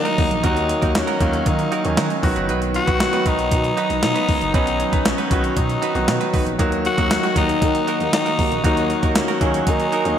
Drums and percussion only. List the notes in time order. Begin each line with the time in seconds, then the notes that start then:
0.05 closed hi-hat
0.18 kick, open hi-hat
0.31 closed hi-hat
0.44 kick, closed hi-hat
0.57 closed hi-hat
0.69 closed hi-hat
0.82 kick, closed hi-hat
0.95 snare, closed hi-hat
1.08 closed hi-hat
1.21 kick, closed hi-hat
1.33 closed hi-hat
1.46 kick, closed hi-hat
1.59 closed hi-hat
1.72 closed hi-hat
1.85 closed hi-hat
1.97 snare, closed hi-hat
2.10 closed hi-hat
2.23 kick, open hi-hat
2.36 closed hi-hat
2.49 closed hi-hat
2.62 closed hi-hat
2.74 closed hi-hat
2.87 kick, closed hi-hat
3.00 snare, closed hi-hat
3.13 closed hi-hat
3.26 kick, closed hi-hat
3.39 closed hi-hat
3.51 kick, closed hi-hat
3.64 closed hi-hat
3.77 closed hi-hat
3.90 closed hi-hat
4.03 snare, closed hi-hat
4.16 closed hi-hat
4.29 kick, open hi-hat
4.41 closed hi-hat
4.54 kick, closed hi-hat
4.67 closed hi-hat
4.80 closed hi-hat
4.93 kick, closed hi-hat
5.05 snare, closed hi-hat
5.18 closed hi-hat
5.31 kick, closed hi-hat
5.44 closed hi-hat
5.57 kick, closed hi-hat
5.70 closed hi-hat
5.83 closed hi-hat
5.95 closed hi-hat
6.08 snare, closed hi-hat
6.21 closed hi-hat
6.34 kick, open hi-hat
6.47 closed hi-hat
6.59 kick, closed hi-hat
6.72 closed hi-hat
6.85 closed hi-hat
6.98 kick, closed hi-hat
7.11 snare, closed hi-hat, tambourine
7.23 closed hi-hat
7.36 kick, closed hi-hat
7.49 closed hi-hat
7.62 kick, closed hi-hat
7.75 closed hi-hat
7.88 closed hi-hat
8.00 closed hi-hat
8.13 snare, closed hi-hat, tambourine
8.26 closed hi-hat
8.39 kick, open hi-hat
8.52 closed hi-hat
8.64 kick, closed hi-hat
8.77 closed hi-hat
8.90 closed hi-hat
9.03 kick, closed hi-hat
9.15 snare, closed hi-hat, tambourine
9.28 closed hi-hat
9.41 kick, closed hi-hat
9.54 closed hi-hat
9.67 kick, closed hi-hat
9.80 closed hi-hat
9.92 closed hi-hat
10.05 closed hi-hat